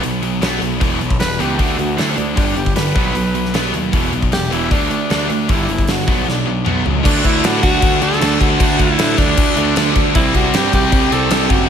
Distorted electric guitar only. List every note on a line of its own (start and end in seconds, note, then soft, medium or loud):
0.03 0.20 B2 medium
0.03 0.21 F#3 medium
0.23 0.40 B2 medium
0.23 0.40 F#3 medium
0.42 0.60 B2 medium
0.42 0.61 F#3 medium
0.42 0.61 B3 loud
0.62 0.79 B2 medium
0.62 0.80 F#3 medium
0.80 0.99 E2 medium
0.80 1.00 B2 medium
0.80 1.00 E3 medium
1.01 1.18 E2 medium
1.01 1.19 B2 medium
1.20 1.38 E2 medium
1.20 1.38 B2 medium
1.39 1.58 E2 medium
1.39 1.57 B2 medium
1.39 1.58 E3 medium
1.58 1.77 D3 medium
1.58 1.77 A3 loud
1.58 1.78 D4 medium
1.78 1.96 D3 medium
1.78 1.96 A3 medium
1.97 2.15 D3 medium
1.97 2.16 A3 medium
1.97 2.17 D4 loud
2.17 2.35 D3 medium
2.17 2.35 A3 medium
2.36 2.54 G2 medium
2.36 2.55 D3 medium
2.36 2.56 G3 medium
2.56 2.74 G2 medium
2.56 2.74 D3 medium
2.76 2.94 G2 medium
2.76 2.94 D3 medium
2.95 3.14 B2 medium
2.95 3.14 F#3 medium
2.95 3.14 B3 medium
3.15 3.33 B2 medium
3.15 3.33 F#3 medium
3.34 3.52 B2 medium
3.34 3.52 F#3 medium
3.54 3.71 B2 medium
3.54 3.72 F#3 medium
3.54 3.73 B3 loud
3.72 3.91 B2 medium
3.72 3.91 F#3 medium
3.92 4.11 E2 medium
3.92 4.11 B2 medium
3.92 4.12 E3 medium
4.12 4.30 E2 medium
4.12 4.30 B2 medium
4.32 4.49 E2 medium
4.32 4.50 B2 medium
4.50 4.69 E2 medium
4.50 4.70 B2 medium
4.50 4.70 E3 medium
4.70 4.89 D3 medium
4.70 4.90 A3 loud
4.70 4.90 D4 medium
4.91 5.08 D3 medium
4.91 5.08 A3 medium
5.10 5.28 D3 medium
5.10 5.29 A3 medium
5.10 5.29 D4 loud
5.30 5.47 D3 medium
5.30 5.48 A3 medium
5.49 5.67 G2 medium
5.49 5.68 D3 medium
5.49 5.68 G3 medium
5.69 5.86 G2 medium
5.69 5.86 D3 medium
5.89 6.06 G2 medium
5.89 6.06 D3 medium
6.08 6.25 B2 medium
6.08 6.26 F#3 medium
6.08 6.27 B3 medium
6.26 6.44 B2 medium
6.26 6.44 F#3 medium
6.46 6.64 B2 medium
6.46 6.64 F#3 medium
6.65 6.84 B2 medium
6.65 6.84 F#3 medium
6.65 6.84 B3 medium
6.85 7.03 B2 medium
6.85 7.03 F#3 medium
7.03 8.58 D3 medium
7.03 8.59 A3 medium
7.03 8.60 D4 medium
8.59 10.13 D3 medium
8.59 10.15 A3 medium
8.59 10.15 D4 medium
10.15 11.69 C3 medium
10.15 11.69 G3 medium
10.15 11.69 C4 loud